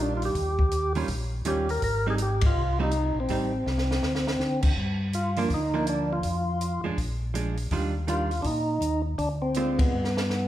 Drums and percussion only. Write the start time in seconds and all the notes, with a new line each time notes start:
0.22 open hi-hat
0.35 kick, open hi-hat
0.59 kick
0.71 closed hi-hat
0.95 open hi-hat
1.08 kick, open hi-hat
1.45 closed hi-hat
1.69 open hi-hat
1.82 kick, open hi-hat
2.18 closed hi-hat
2.41 kick, ride
2.91 closed hi-hat
3.28 kick, open hi-hat
3.67 snare
3.78 snare
3.91 snare
4.03 snare
4.15 snare
4.27 snare
4.40 snare
4.62 kick, crash
4.77 kick
5.13 closed hi-hat
5.36 open hi-hat
5.50 kick, open hi-hat
5.87 closed hi-hat
6.23 kick, open hi-hat
6.61 closed hi-hat
6.98 kick, open hi-hat
7.35 closed hi-hat
7.57 open hi-hat
7.71 kick, open hi-hat
8.08 closed hi-hat
8.31 open hi-hat
8.44 kick, open hi-hat
8.82 closed hi-hat
9.18 kick, open hi-hat
9.54 closed hi-hat
9.79 kick, ride
10.04 snare
10.17 snare
10.30 snare